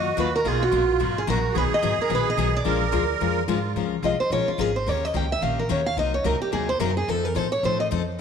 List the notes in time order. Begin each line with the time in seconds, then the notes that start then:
Already playing: F#2 F#4 D#5
0.17 D#2 D#3 F#3 A#3 F4 B4
0.36 A#4
0.45 B1 B2 F#3 A#3 D#4 F4 F#4 G#4
0.63 F#4
0.72 A#1 B2 F#3 A#3 D#4 F#4
1.00 G#1 B2 F#3 A#3 D#4 F#4
1.18 G#4
1.27 A#1 B2 F#3 A#3 D#4 F#4 A#4
1.53 B1 B2 D#3 F#3 B3 D#4 G#4
1.58 B4
1.71 D#5, muted upright bass stroke
1.82 G#1 B2 D#3 F#3 B3 D#4 G#4
1.98 A#4, muted upright bass stroke
2.10 A#1 B2 D#3 F#3 B3 D#4 G#4
2.15 B4
2.30 D#5
2.37 B1 B2 D#3 F#3 B3 D#4 G#4
2.57 D5
2.64 A#1 F3 G#3 D4 F4 A#4
2.92 D2 F3 G#3 D4 F4 A#4
3.21 F2 F3 G#3 D4 F4 A#4
3.48 G#2 F3 G#3 D4 F4 A#4
3.76 C#2 F3 G#3 C#4 F4 A#4
4.03 C2 F3 G#3 C#4 F4 A#4 D#5
4.20 C5, muted upright bass stroke
4.30 A#1 F3 G#3 C#4 F4 A#4 C#5
4.47 F4, muted upright bass stroke
4.58 G#1 F3 G#3 C#4 F4 G#4 A#4
4.76 C5
4.86 D#2 D#3 A#3 C#4 G4 A#4 C#5
5.05 D#5
5.13 C#2 D#3 A#3 C#4 G4 A#4 G5
5.32 E5
5.41 A#1 D#3 A#3 C#4 G4 A#4 F5
5.59 A#4
5.69 D#2 D#3 A#3 C#4 G4 A#4 C#5
5.86 F5
5.97 C2 C3 F#3 A#3 D#4 A#4 D#5
6.14 C#5
6.24 C#2 C3 F#3 A#3 D#4 A#4
6.41 G4, muted upright bass stroke
6.52 D#2 C3 F#3 A#3 D#4 G#4 A#4
6.69 C5
6.79 F#2 C3 F#3 A#3 D#4 A#4
6.97 G#4
7.08 F2 F3 C4 D#4 A4
7.25 A#4
7.35 A2 F3 C4 D#4 A4 C5
7.52 C#5
7.63 A2 F3 C4 D#4 A4 C5
7.80 D#5
7.91 F2 F3 C4 D#4 A4